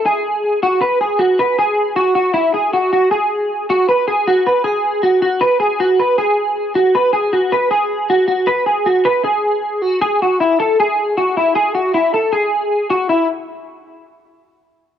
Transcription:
0, 0, Header, 1, 2, 480
1, 0, Start_track
1, 0, Key_signature, 4, "major"
1, 0, Tempo, 383877
1, 1018, Time_signature, 4, 2, 24, 8
1, 18740, End_track
2, 0, Start_track
2, 0, Title_t, "Clean electric guitar"
2, 0, Program_c, 0, 27
2, 70, Note_on_c, 0, 68, 84
2, 741, Note_off_c, 0, 68, 0
2, 788, Note_on_c, 0, 66, 78
2, 1016, Note_off_c, 0, 66, 0
2, 1021, Note_on_c, 0, 71, 98
2, 1257, Note_off_c, 0, 71, 0
2, 1262, Note_on_c, 0, 68, 75
2, 1489, Note_on_c, 0, 66, 85
2, 1499, Note_off_c, 0, 68, 0
2, 1733, Note_off_c, 0, 66, 0
2, 1740, Note_on_c, 0, 71, 87
2, 1977, Note_off_c, 0, 71, 0
2, 1982, Note_on_c, 0, 68, 89
2, 2430, Note_off_c, 0, 68, 0
2, 2454, Note_on_c, 0, 66, 85
2, 2677, Note_off_c, 0, 66, 0
2, 2692, Note_on_c, 0, 66, 73
2, 2918, Note_off_c, 0, 66, 0
2, 2923, Note_on_c, 0, 64, 111
2, 3169, Note_off_c, 0, 64, 0
2, 3174, Note_on_c, 0, 68, 80
2, 3412, Note_off_c, 0, 68, 0
2, 3417, Note_on_c, 0, 66, 80
2, 3645, Note_off_c, 0, 66, 0
2, 3660, Note_on_c, 0, 66, 79
2, 3884, Note_off_c, 0, 66, 0
2, 3889, Note_on_c, 0, 68, 78
2, 4567, Note_off_c, 0, 68, 0
2, 4626, Note_on_c, 0, 66, 77
2, 4855, Note_off_c, 0, 66, 0
2, 4860, Note_on_c, 0, 71, 99
2, 5092, Note_off_c, 0, 71, 0
2, 5097, Note_on_c, 0, 68, 80
2, 5334, Note_off_c, 0, 68, 0
2, 5345, Note_on_c, 0, 66, 84
2, 5578, Note_off_c, 0, 66, 0
2, 5584, Note_on_c, 0, 71, 87
2, 5798, Note_off_c, 0, 71, 0
2, 5803, Note_on_c, 0, 68, 88
2, 6257, Note_off_c, 0, 68, 0
2, 6291, Note_on_c, 0, 66, 80
2, 6514, Note_off_c, 0, 66, 0
2, 6529, Note_on_c, 0, 66, 71
2, 6763, Note_on_c, 0, 71, 103
2, 6769, Note_off_c, 0, 66, 0
2, 6995, Note_off_c, 0, 71, 0
2, 7000, Note_on_c, 0, 68, 82
2, 7244, Note_off_c, 0, 68, 0
2, 7253, Note_on_c, 0, 66, 80
2, 7490, Note_off_c, 0, 66, 0
2, 7497, Note_on_c, 0, 71, 84
2, 7724, Note_off_c, 0, 71, 0
2, 7729, Note_on_c, 0, 68, 81
2, 8404, Note_off_c, 0, 68, 0
2, 8444, Note_on_c, 0, 66, 81
2, 8685, Note_off_c, 0, 66, 0
2, 8689, Note_on_c, 0, 71, 89
2, 8911, Note_off_c, 0, 71, 0
2, 8916, Note_on_c, 0, 68, 81
2, 9160, Note_off_c, 0, 68, 0
2, 9166, Note_on_c, 0, 66, 83
2, 9405, Note_off_c, 0, 66, 0
2, 9407, Note_on_c, 0, 71, 88
2, 9633, Note_off_c, 0, 71, 0
2, 9638, Note_on_c, 0, 68, 90
2, 10091, Note_off_c, 0, 68, 0
2, 10126, Note_on_c, 0, 66, 85
2, 10336, Note_off_c, 0, 66, 0
2, 10351, Note_on_c, 0, 66, 72
2, 10591, Note_on_c, 0, 71, 105
2, 10597, Note_off_c, 0, 66, 0
2, 10826, Note_off_c, 0, 71, 0
2, 10831, Note_on_c, 0, 68, 77
2, 11077, Note_off_c, 0, 68, 0
2, 11079, Note_on_c, 0, 66, 81
2, 11314, Note_on_c, 0, 71, 88
2, 11320, Note_off_c, 0, 66, 0
2, 11551, Note_off_c, 0, 71, 0
2, 11556, Note_on_c, 0, 68, 89
2, 12276, Note_off_c, 0, 68, 0
2, 12276, Note_on_c, 0, 66, 83
2, 12517, Note_off_c, 0, 66, 0
2, 12522, Note_on_c, 0, 68, 96
2, 12762, Note_off_c, 0, 68, 0
2, 12780, Note_on_c, 0, 66, 72
2, 13002, Note_off_c, 0, 66, 0
2, 13007, Note_on_c, 0, 64, 74
2, 13244, Note_off_c, 0, 64, 0
2, 13249, Note_on_c, 0, 69, 87
2, 13486, Note_off_c, 0, 69, 0
2, 13500, Note_on_c, 0, 68, 86
2, 13943, Note_off_c, 0, 68, 0
2, 13972, Note_on_c, 0, 66, 82
2, 14208, Note_off_c, 0, 66, 0
2, 14216, Note_on_c, 0, 64, 66
2, 14440, Note_off_c, 0, 64, 0
2, 14445, Note_on_c, 0, 68, 95
2, 14682, Note_off_c, 0, 68, 0
2, 14687, Note_on_c, 0, 66, 70
2, 14926, Note_off_c, 0, 66, 0
2, 14932, Note_on_c, 0, 64, 76
2, 15169, Note_off_c, 0, 64, 0
2, 15177, Note_on_c, 0, 69, 74
2, 15407, Note_off_c, 0, 69, 0
2, 15412, Note_on_c, 0, 68, 82
2, 16089, Note_off_c, 0, 68, 0
2, 16134, Note_on_c, 0, 66, 70
2, 16366, Note_off_c, 0, 66, 0
2, 16371, Note_on_c, 0, 64, 66
2, 16595, Note_off_c, 0, 64, 0
2, 18740, End_track
0, 0, End_of_file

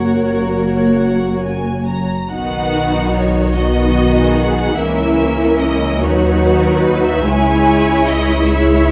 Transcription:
0, 0, Header, 1, 6, 480
1, 0, Start_track
1, 0, Key_signature, 5, "major"
1, 0, Tempo, 940439
1, 1187, Time_signature, 6, 3, 24, 8
1, 1188, Tempo, 821918
1, 3588, Tempo, 808625
1, 5059, End_track
2, 0, Start_track
2, 0, Title_t, "Violin section"
2, 0, Program_c, 0, 48
2, 0, Note_on_c, 0, 78, 38
2, 409, Note_off_c, 0, 78, 0
2, 478, Note_on_c, 0, 78, 35
2, 702, Note_off_c, 0, 78, 0
2, 719, Note_on_c, 0, 80, 35
2, 955, Note_off_c, 0, 80, 0
2, 959, Note_on_c, 0, 82, 39
2, 1182, Note_off_c, 0, 82, 0
2, 1184, Note_on_c, 0, 78, 64
2, 1654, Note_off_c, 0, 78, 0
2, 1680, Note_on_c, 0, 73, 53
2, 1915, Note_on_c, 0, 75, 55
2, 1920, Note_off_c, 0, 73, 0
2, 2387, Note_off_c, 0, 75, 0
2, 2391, Note_on_c, 0, 78, 59
2, 2623, Note_on_c, 0, 76, 65
2, 2625, Note_off_c, 0, 78, 0
2, 3104, Note_on_c, 0, 75, 61
2, 3109, Note_off_c, 0, 76, 0
2, 3343, Note_on_c, 0, 73, 53
2, 3349, Note_off_c, 0, 75, 0
2, 3704, Note_off_c, 0, 73, 0
2, 3711, Note_on_c, 0, 70, 58
2, 3825, Note_on_c, 0, 71, 61
2, 3830, Note_off_c, 0, 70, 0
2, 3946, Note_off_c, 0, 71, 0
2, 3955, Note_on_c, 0, 76, 64
2, 4068, Note_on_c, 0, 80, 79
2, 4072, Note_off_c, 0, 76, 0
2, 4549, Note_on_c, 0, 75, 68
2, 4555, Note_off_c, 0, 80, 0
2, 4790, Note_off_c, 0, 75, 0
2, 4790, Note_on_c, 0, 76, 66
2, 5059, Note_off_c, 0, 76, 0
2, 5059, End_track
3, 0, Start_track
3, 0, Title_t, "Violin section"
3, 0, Program_c, 1, 48
3, 0, Note_on_c, 1, 70, 49
3, 839, Note_off_c, 1, 70, 0
3, 1186, Note_on_c, 1, 63, 47
3, 1187, Note_on_c, 1, 66, 46
3, 1896, Note_off_c, 1, 63, 0
3, 1897, Note_off_c, 1, 66, 0
3, 1920, Note_on_c, 1, 63, 41
3, 1921, Note_on_c, 1, 66, 40
3, 2267, Note_off_c, 1, 66, 0
3, 2273, Note_on_c, 1, 68, 40
3, 2610, Note_off_c, 1, 63, 0
3, 2617, Note_off_c, 1, 68, 0
3, 2631, Note_on_c, 1, 61, 51
3, 2632, Note_on_c, 1, 70, 53
3, 3340, Note_off_c, 1, 61, 0
3, 3341, Note_off_c, 1, 70, 0
3, 3351, Note_on_c, 1, 66, 43
3, 3355, Note_on_c, 1, 71, 47
3, 4072, Note_off_c, 1, 66, 0
3, 4074, Note_off_c, 1, 71, 0
3, 4078, Note_on_c, 1, 64, 62
3, 4080, Note_on_c, 1, 73, 61
3, 4782, Note_off_c, 1, 64, 0
3, 4788, Note_off_c, 1, 73, 0
3, 4795, Note_on_c, 1, 64, 54
3, 4795, Note_on_c, 1, 73, 53
3, 5059, Note_off_c, 1, 64, 0
3, 5059, Note_off_c, 1, 73, 0
3, 5059, End_track
4, 0, Start_track
4, 0, Title_t, "Cello section"
4, 0, Program_c, 2, 48
4, 0, Note_on_c, 2, 58, 47
4, 959, Note_off_c, 2, 58, 0
4, 1189, Note_on_c, 2, 63, 42
4, 1898, Note_off_c, 2, 63, 0
4, 1922, Note_on_c, 2, 66, 47
4, 2623, Note_on_c, 2, 64, 46
4, 2626, Note_off_c, 2, 66, 0
4, 3336, Note_off_c, 2, 64, 0
4, 3349, Note_on_c, 2, 66, 49
4, 4068, Note_on_c, 2, 64, 56
4, 4071, Note_off_c, 2, 66, 0
4, 5059, Note_off_c, 2, 64, 0
4, 5059, End_track
5, 0, Start_track
5, 0, Title_t, "Viola section"
5, 0, Program_c, 3, 48
5, 0, Note_on_c, 3, 66, 43
5, 0, Note_on_c, 3, 73, 44
5, 1061, Note_off_c, 3, 66, 0
5, 1061, Note_off_c, 3, 73, 0
5, 1184, Note_on_c, 3, 59, 46
5, 1186, Note_on_c, 3, 51, 44
5, 1895, Note_off_c, 3, 59, 0
5, 1896, Note_off_c, 3, 51, 0
5, 1917, Note_on_c, 3, 51, 47
5, 1918, Note_on_c, 3, 59, 49
5, 2609, Note_off_c, 3, 51, 0
5, 2610, Note_off_c, 3, 59, 0
5, 2623, Note_on_c, 3, 52, 44
5, 2623, Note_on_c, 3, 58, 45
5, 3336, Note_off_c, 3, 52, 0
5, 3336, Note_off_c, 3, 58, 0
5, 3350, Note_on_c, 3, 63, 51
5, 3351, Note_on_c, 3, 54, 55
5, 4057, Note_off_c, 3, 54, 0
5, 4072, Note_off_c, 3, 63, 0
5, 4072, Note_on_c, 3, 64, 59
5, 4073, Note_on_c, 3, 56, 55
5, 4780, Note_off_c, 3, 56, 0
5, 4788, Note_off_c, 3, 64, 0
5, 4792, Note_on_c, 3, 56, 62
5, 4795, Note_on_c, 3, 64, 58
5, 5059, Note_off_c, 3, 56, 0
5, 5059, Note_off_c, 3, 64, 0
5, 5059, End_track
6, 0, Start_track
6, 0, Title_t, "Double bass section"
6, 0, Program_c, 4, 48
6, 0, Note_on_c, 4, 30, 36
6, 1062, Note_off_c, 4, 30, 0
6, 1191, Note_on_c, 4, 35, 44
6, 2603, Note_off_c, 4, 35, 0
6, 2627, Note_on_c, 4, 37, 47
6, 3338, Note_off_c, 4, 37, 0
6, 3351, Note_on_c, 4, 39, 53
6, 4072, Note_off_c, 4, 39, 0
6, 4074, Note_on_c, 4, 37, 53
6, 5059, Note_off_c, 4, 37, 0
6, 5059, End_track
0, 0, End_of_file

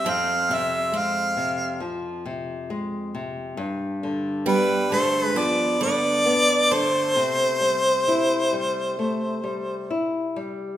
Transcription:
0, 0, Header, 1, 4, 480
1, 0, Start_track
1, 0, Key_signature, 0, "major"
1, 0, Tempo, 887574
1, 20, Time_signature, 4, 2, 24, 8
1, 3380, Tempo, 914634
1, 5752, End_track
2, 0, Start_track
2, 0, Title_t, "Harmonica"
2, 0, Program_c, 0, 22
2, 0, Note_on_c, 0, 76, 88
2, 54, Note_on_c, 0, 77, 96
2, 62, Note_off_c, 0, 76, 0
2, 296, Note_on_c, 0, 76, 89
2, 304, Note_off_c, 0, 77, 0
2, 529, Note_on_c, 0, 77, 89
2, 537, Note_off_c, 0, 76, 0
2, 989, Note_off_c, 0, 77, 0
2, 2422, Note_on_c, 0, 71, 88
2, 2642, Note_off_c, 0, 71, 0
2, 2665, Note_on_c, 0, 72, 96
2, 2833, Note_off_c, 0, 72, 0
2, 2833, Note_on_c, 0, 71, 96
2, 2910, Note_on_c, 0, 74, 99
2, 2918, Note_off_c, 0, 71, 0
2, 3145, Note_off_c, 0, 74, 0
2, 3152, Note_on_c, 0, 74, 123
2, 3633, Note_on_c, 0, 72, 100
2, 3641, Note_off_c, 0, 74, 0
2, 5304, Note_off_c, 0, 72, 0
2, 5752, End_track
3, 0, Start_track
3, 0, Title_t, "Twelve-string acoustic guitar"
3, 0, Program_c, 1, 25
3, 32, Note_on_c, 1, 60, 85
3, 266, Note_off_c, 1, 60, 0
3, 275, Note_on_c, 1, 60, 62
3, 499, Note_off_c, 1, 60, 0
3, 506, Note_on_c, 1, 60, 66
3, 978, Note_off_c, 1, 60, 0
3, 2412, Note_on_c, 1, 55, 78
3, 2637, Note_off_c, 1, 55, 0
3, 2660, Note_on_c, 1, 57, 70
3, 2828, Note_off_c, 1, 57, 0
3, 2828, Note_on_c, 1, 56, 70
3, 2899, Note_off_c, 1, 56, 0
3, 2899, Note_on_c, 1, 59, 69
3, 3134, Note_off_c, 1, 59, 0
3, 3141, Note_on_c, 1, 59, 87
3, 3599, Note_off_c, 1, 59, 0
3, 3624, Note_on_c, 1, 57, 73
3, 5300, Note_off_c, 1, 57, 0
3, 5752, End_track
4, 0, Start_track
4, 0, Title_t, "Nylon-string guitar"
4, 0, Program_c, 2, 24
4, 25, Note_on_c, 2, 41, 61
4, 264, Note_on_c, 2, 48, 43
4, 492, Note_off_c, 2, 48, 0
4, 498, Note_on_c, 2, 56, 53
4, 727, Note_off_c, 2, 56, 0
4, 739, Note_on_c, 2, 48, 49
4, 969, Note_off_c, 2, 48, 0
4, 976, Note_on_c, 2, 53, 53
4, 1208, Note_off_c, 2, 53, 0
4, 1220, Note_on_c, 2, 48, 50
4, 1450, Note_off_c, 2, 48, 0
4, 1461, Note_on_c, 2, 56, 56
4, 1690, Note_off_c, 2, 56, 0
4, 1701, Note_on_c, 2, 48, 45
4, 1914, Note_off_c, 2, 41, 0
4, 1930, Note_off_c, 2, 48, 0
4, 1932, Note_on_c, 2, 43, 66
4, 2181, Note_on_c, 2, 50, 45
4, 2410, Note_on_c, 2, 59, 53
4, 2411, Note_off_c, 2, 50, 0
4, 2646, Note_off_c, 2, 59, 0
4, 2647, Note_on_c, 2, 50, 50
4, 2885, Note_off_c, 2, 50, 0
4, 2892, Note_on_c, 2, 53, 56
4, 3129, Note_off_c, 2, 53, 0
4, 3139, Note_on_c, 2, 50, 47
4, 3375, Note_off_c, 2, 50, 0
4, 3385, Note_on_c, 2, 59, 56
4, 3613, Note_off_c, 2, 59, 0
4, 3622, Note_on_c, 2, 50, 49
4, 3834, Note_off_c, 2, 43, 0
4, 3850, Note_off_c, 2, 50, 0
4, 3858, Note_on_c, 2, 48, 62
4, 4091, Note_on_c, 2, 55, 43
4, 4325, Note_off_c, 2, 55, 0
4, 4340, Note_on_c, 2, 64, 50
4, 4570, Note_off_c, 2, 64, 0
4, 4575, Note_on_c, 2, 55, 49
4, 4807, Note_off_c, 2, 55, 0
4, 4816, Note_on_c, 2, 57, 47
4, 5049, Note_off_c, 2, 57, 0
4, 5052, Note_on_c, 2, 55, 41
4, 5288, Note_off_c, 2, 55, 0
4, 5298, Note_on_c, 2, 64, 43
4, 5533, Note_off_c, 2, 64, 0
4, 5539, Note_on_c, 2, 55, 46
4, 5752, Note_off_c, 2, 48, 0
4, 5752, Note_off_c, 2, 55, 0
4, 5752, End_track
0, 0, End_of_file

